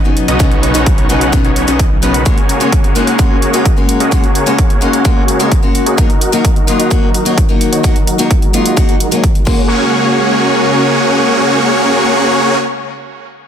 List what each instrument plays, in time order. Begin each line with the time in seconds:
Already playing: analog synth pad C#3 F#3 B3 D#4
0.04 steel-string acoustic guitar B2 F#3 B3 C#4 D#4
0.17 closed hi-hat
0.28 detuned saw bass B1, supersaw synth B3 C#4 D#4 F#4 D#5, closed hi-hat
0.39 detuned saw bass B1, steel-string acoustic guitar B2 F#3 B3 C#4 D#4, supersaw synth B3 C#4 D#4 C#5, analog synth pad A#4, kick, closed hi-hat
0.52 closed hi-hat
0.63 closed hi-hat
0.74 detuned saw bass B1, steel-string acoustic guitar B2 F#3 B3 C#4 D#4, supersaw synth B3 C#4 D#4 F#4 C#5, closed hi-hat
0.86 kick, closed hi-hat
0.98 closed hi-hat
1.09 detuned saw bass B1, steel-string acoustic guitar B2 F#3 B3 C#4 D#4, supersaw synth B3 C#4 D#4 F#4 F#5, closed hi-hat
1.21 closed hi-hat
1.32 steel-string acoustic guitar B2 F#3 B3 C#4 D#4, kick, closed hi-hat
1.45 detuned saw bass B1, supersaw synth B3 C#4 D#4 F#4 C#5, closed hi-hat
1.56 closed hi-hat
1.67 detuned saw bass B1, steel-string acoustic guitar B2 F#3 B3 C#4 F#4, supersaw synth B3 C#4 D#4 F#4 D#5, closed hi-hat
1.79 kick, closed hi-hat
2.02 detuned saw bass B1, steel-string acoustic guitar F#3 B3 C#4 G#4, supersaw synth B3 C#4 D#4 F#4 B4, closed hi-hat
2.14 closed hi-hat
2.25 steel-string acoustic guitar G#3 A#3 C#4 F#4, analog synth pad G#3 F#4, supersaw synth A#3, kick, closed hi-hat
2.38 closed hi-hat
2.49 closed hi-hat
2.60 steel-string acoustic guitar G#3 A#3 C#4 F#4, supersaw synth A#3 C#4 F#4 G#4 C#5, closed hi-hat
2.72 kick, closed hi-hat
2.84 closed hi-hat
2.95 steel-string acoustic guitar G#3 A#3 C#4 D#4, supersaw synth A#3 C#4 F#4 G#4 F#5, closed hi-hat
3.07 closed hi-hat
3.19 steel-string acoustic guitar A#3 C#4 F#4, kick, closed hi-hat
3.31 supersaw synth A#3 C#4 F#4 G#4 C#5
3.42 closed hi-hat
3.53 steel-string acoustic guitar G#3 A#3 C#4 F#4, supersaw synth A#3 C#4 F#4 G#4 D#5, closed hi-hat
3.65 kick, closed hi-hat
3.76 steel-string acoustic guitar G#3 A#3 C#4 F#4
3.89 closed hi-hat
4.00 supersaw synth A#3 C#4 F#4 G#4 D#5, closed hi-hat
4.11 steel-string acoustic guitar G#3 A#3 C#4 F#4, supersaw synth A#3 C#4 F#4 C#5, kick, closed hi-hat
4.24 closed hi-hat
4.35 closed hi-hat
4.46 steel-string acoustic guitar G#3 A#3 C#4 F#4, supersaw synth A#3 C#4 F#4 G#4 C#5, closed hi-hat
4.59 kick, closed hi-hat
4.70 closed hi-hat
4.81 steel-string acoustic guitar G#3 A#3 C#4 D#4, supersaw synth A#3 C#4 F#4 G#4 F#5, closed hi-hat
4.93 closed hi-hat
5.04 steel-string acoustic guitar G#3 A#3 C#4 F#4, kick, closed hi-hat
5.17 supersaw synth A#3 C#4 F#4 G#4 C#5
5.28 closed hi-hat
5.39 steel-string acoustic guitar G#3 A#3 C#4 F#4, supersaw synth A#3 C#4 F#4 G#4 D#5, closed hi-hat
5.52 kick, closed hi-hat
5.62 steel-string acoustic guitar G#3 A#3 C#4 F#4
5.75 closed hi-hat
5.86 supersaw synth A#3 C#4 F#4 G#4 D#5, closed hi-hat
5.97 analog synth pad D#3 F#3, steel-string acoustic guitar F#3 A#3 D#4 F#4, supersaw synth D#4 A#4, kick, closed hi-hat
6.10 closed hi-hat
6.21 closed hi-hat
6.32 steel-string acoustic guitar F#3 A#3 D#4 F#4, supersaw synth D#4 F#4 A#4, closed hi-hat
6.45 kick, closed hi-hat
6.56 closed hi-hat
6.67 steel-string acoustic guitar F#3 A#3 D#4 F4, supersaw synth D#4 F#4 D#5, closed hi-hat
6.80 closed hi-hat
6.90 steel-string acoustic guitar F#3 A#3 F#4, kick, closed hi-hat
7.03 supersaw synth D#4 F#4 A#4
7.14 closed hi-hat
7.25 steel-string acoustic guitar F#3 A#3 D#4 F#4, supersaw synth D#4 F#4 C#5, closed hi-hat
7.38 kick, closed hi-hat
7.49 steel-string acoustic guitar F#3 A#3 D#4 F#4
7.61 closed hi-hat
7.72 supersaw synth D#4 F#4 C#5, closed hi-hat
7.83 steel-string acoustic guitar F#3 A#3 D#4 F#4, analog synth pad G#3, supersaw synth A#4, kick, closed hi-hat
7.96 closed hi-hat
8.07 closed hi-hat
8.18 steel-string acoustic guitar F#3 A#3 D#4 F#4, supersaw synth D#4 F#4 A#4, closed hi-hat
8.31 kick, closed hi-hat
8.42 closed hi-hat
8.53 steel-string acoustic guitar F#3 A#3 D#4 F4, supersaw synth D#4 F#4 D#5, closed hi-hat
8.66 closed hi-hat
8.76 steel-string acoustic guitar F#3 D#4 F#4, kick, closed hi-hat
8.89 supersaw synth D#4 F#4 A#4, closed hi-hat
9.00 closed hi-hat
9.11 steel-string acoustic guitar F#3 A#3 D#4 G#4, supersaw synth D#4 F#4 C#5, closed hi-hat
9.24 kick, closed hi-hat
9.35 closed hi-hat
9.45 analog synth pad C#3 G#3 A#3 F#4, steel-string acoustic guitar G#3 A#3 C#4 F#4, supersaw synth A#3 C#4 F#4 G#4 C#5, kick, crash